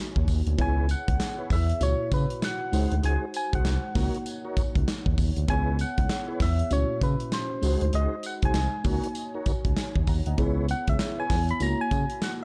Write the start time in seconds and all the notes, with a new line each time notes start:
Already playing: A#3 D#4 F#4 C#5
0.16 D#2, kick
0.28 D#2, kick, open hi-hat, tambourine
0.47 D2, closed hi-hat
0.58 C#2 B3 E4 G#4 B4 C#5 G#5, kick, closed hi-hat
0.89 F#5, closed hi-hat, tambourine
1.08 C#2, kick, closed hi-hat
1.20 snare, clap, closed hi-hat, tambourine
1.38 E4 G#4 B4 C#5
1.50 E2 E5, kick, open hi-hat, tambourine
1.69 closed hi-hat
1.80 C#2 A#2 E4 F#4 C#5, closed hi-hat, tambourine
2.12 C#3 B4, kick, closed hi-hat, tambourine
2.30 closed hi-hat
2.42 F#5, snare, clap, closed hi-hat, tambourine
2.72 C#2 G#3 D#4 F#4 G#4 C5, open hi-hat, tambourine
2.92 D2, closed hi-hat
3.03 C#2 D#4 F#4 G#4 C5 G#5, closed hi-hat
3.34 G#5, closed hi-hat, tambourine
3.52 C2 D#4 F#4 G#4 C5 F#5, kick, closed hi-hat
3.65 C2, snare, clap, closed hi-hat, tambourine
3.95 C#2 A#3 D#4 F4 F#4 A#4 C#5, kick, snare, open hi-hat, tambourine
4.03 F#4
4.14 closed hi-hat
4.26 closed hi-hat, tambourine
4.44 D#4 F#4 A#4 C#5
4.57 C#2, kick, closed hi-hat, tambourine
4.75 C#2, kick, closed hi-hat
4.88 snare, clap, closed hi-hat, tambourine
5.06 D#2, kick
5.18 D#2, kick, open hi-hat, tambourine
5.36 D2, closed hi-hat
5.48 C#2 B3 E4 G#4 B4 C#5 G#5, kick, closed hi-hat
5.79 F#5, closed hi-hat, tambourine
5.98 C#2, kick, closed hi-hat
6.09 snare, clap, closed hi-hat, tambourine
6.28 E4 G#4 B4 C#5
6.40 E2 E5, kick, snare, open hi-hat, tambourine
6.59 closed hi-hat
6.70 C#2 A3 C#4 E4 F#4 C#5, closed hi-hat, tambourine
6.77 A#2
7.01 C#3 B4, kick, closed hi-hat, tambourine
7.20 closed hi-hat
7.32 C5, snare, clap, closed hi-hat, tambourine
7.61 C#2 G#3 D#4 F#4 G#4 C5, open hi-hat, tambourine
7.81 D2, closed hi-hat
7.93 C#2 D#4 F#4 G#4 C5 D#5, closed hi-hat
8.23 F#5, closed hi-hat, tambourine
8.42 C2 D#4 F#4 G#4 C5 G#5, kick, closed hi-hat
8.54 C2, snare, clap, closed hi-hat, tambourine
8.84 C#2 A#3 D#4 F#4 A#4 C#5, kick, open hi-hat, tambourine
9.04 closed hi-hat
9.15 closed hi-hat, tambourine
9.34 D#4 F#4 A#4 C#5
9.46 C#2, kick, closed hi-hat, tambourine
9.65 C#2, kick, closed hi-hat
9.77 G#5, snare, clap, closed hi-hat, tambourine
9.95 D#2, kick
10.07 D#2 F#5 A#5, kick, open hi-hat, tambourine
10.26 D2 D#5 F#5, closed hi-hat
10.38 C#2 B3 E4 G#4 B4 C#5, kick, closed hi-hat
10.69 F#5, closed hi-hat, tambourine
10.87 C#2 E5, kick, closed hi-hat
10.99 snare, clap, closed hi-hat, tambourine
11.18 E4 G#4 B4 C#5 G#5
11.30 E2, kick, snare, open hi-hat, tambourine
11.49 B5, closed hi-hat
11.60 C#2 A#3 E4 F#4 C#5 A#5, closed hi-hat, tambourine
11.81 G#5
11.91 C#3, kick, closed hi-hat, tambourine
12.10 closed hi-hat
12.22 F#5, snare, clap, closed hi-hat, tambourine